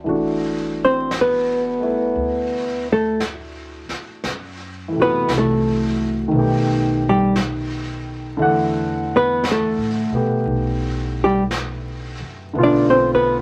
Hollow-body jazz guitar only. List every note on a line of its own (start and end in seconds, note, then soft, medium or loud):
0.85 1.14 C4 medium
0.85 1.14 C5 medium
1.21 2.87 B3 soft
1.21 2.87 B4 medium
2.92 3.22 A3 medium
2.92 3.22 A4 medium
5.02 5.31 B3 medium
5.02 5.31 B4 medium
5.38 7.03 A3 soft
5.38 7.03 A4 medium
7.09 7.38 G3 medium
7.09 7.38 G4 medium
9.16 9.46 B3 medium
9.16 9.46 B4 medium
9.51 11.18 A3 medium
9.51 11.18 A4 medium
11.24 11.43 G3 medium
11.24 11.42 G4 medium
12.63 12.94 D4 medium
12.63 12.90 D5 medium
12.90 13.25 C4 medium
12.90 13.14 C5 medium
13.15 13.37 B3 medium
13.15 13.37 B4 medium